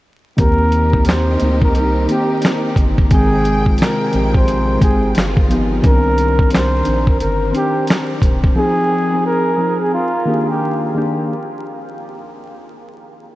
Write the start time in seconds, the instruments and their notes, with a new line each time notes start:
0.37 analog synth bass D#2, synth keys D#3 A#3 C4 G4, string section C4 D#4 G4, flugelhorn A#4, kick, closed hi-hat
0.72 closed hi-hat
0.91 synth keys D#3 A#3 C4 G4, kick
1.05 flugelhorn C5, closed hi-hat
1.09 snare, clap
1.40 analog synth bass D2, synth keys A#3 C4 D#4, closed hi-hat
1.44 synth keys A#4
1.62 flugelhorn A#4, kick
1.75 analog synth bass C2, flugelhorn A#4, closed hi-hat
2.08 synth keys D#3 A#3 C4 G4, flugelhorn G4, closed hi-hat
2.42 snare, closed hi-hat
2.46 clap
2.76 analog synth bass G1, kick, closed hi-hat
2.98 kick
3.11 analog synth bass G#1, string section C3 G#3 G5, synth keys D#3 G#3 C4 G5, flugelhorn G#4, kick, closed hi-hat
3.45 closed hi-hat
3.66 synth keys D#3 G#3 C4 F4, kick
3.78 flugelhorn A#4, closed hi-hat
3.82 snare, clap
4.13 analog synth bass A#1, synth keys D#3 G#3 C4 G4, closed hi-hat
4.34 flugelhorn C5, kick
4.48 closed hi-hat
4.78 synth keys D#3 G#3 C4 G5, kick, closed hi-hat
4.82 analog synth bass G#1, flugelhorn G#4
5.15 analog synth bass G1, string section D#3 B3 F4, snare, closed hi-hat
5.19 clap
5.37 kick
5.49 synth keys F3 B3 D#4 G4, closed hi-hat
5.82 analog synth bass C2, synth keys D#3 C4 D4 A#4, flugelhorn A#4, kick, closed hi-hat
6.18 closed hi-hat
6.38 synth keys D#3 C4 D4 A#4, kick
6.51 flugelhorn C5, closed hi-hat
6.55 snare, clap
6.83 synth keys D#3 C4 D4 A#4, closed hi-hat
6.87 analog synth bass A#1
7.07 flugelhorn A#4, kick
7.20 analog synth bass G1, flugelhorn A#4, closed hi-hat
7.51 synth keys D#3 C4 D4 C5, closed hi-hat
7.56 flugelhorn G4
7.87 snare, closed hi-hat
7.91 clap
8.22 analog synth bass E1, kick, closed hi-hat
8.44 kick
8.56 synth keys F3 C4 D#4 G#4, flugelhorn G#4
9.12 synth keys F3 C4 D#4 G#4
9.26 flugelhorn A#4
9.58 synth keys F3 C4 D#4 G#4
9.81 flugelhorn G#4
9.94 flugelhorn F4
10.26 synth keys D#3 A#3 D4 G4
10.49 flugelhorn G4
10.94 synth keys D#3 A#3 D4 G4